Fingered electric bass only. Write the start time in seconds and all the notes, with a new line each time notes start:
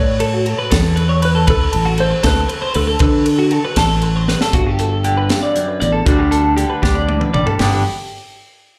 Already playing: A2
0.72 E2
1.48 D2
1.74 A1
2.24 D2
2.76 D2
3.01 D3
3.77 A1
4.54 G1
5.82 A1
6.06 D2
6.83 D2
7.34 A1
7.60 G1